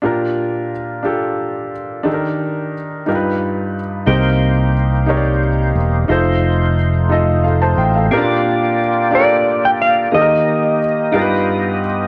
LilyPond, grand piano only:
<<
  \new Staff \with { instrumentName = "Grand piano" } { \time 6/8 \key bes \major \tempo 4. = 60 << { r2. | r2. | r2. | r2 <a' f''>16 <c'' a''>16 g''16 <a' f''>16~ |
<a' f''>16 r2 r8. | r2. | } \\ { <d' f' g' bes'>4 r8 <d' f' g' a'>4 r8 | <d' ees' g' a' bes'>4 r8 <dis' f' g' bes' b'>4 r8 | <ees' g' bes' c''>4 r8 <ees' g' bes' des'' d''>4 r8 | <ees' f' a' c''>4 r8 <ees' f' a' ees''>4 r8 |
<c' d' f' g' bes'>4 r8 <d' f' g' a' bes'>4 r8 | <bes ees' g' a' bes'>4 r8 <dis' f' g' bes' b'>4 r8 | } >> }
  \new Staff \with { instrumentName = "Grand piano" } { \clef bass \time 6/8 \key bes \major bes,4. r4. | ees4. g,4. | c4. r4. | r2. |
bes,4. r4. | ees4. g,4. | }
>>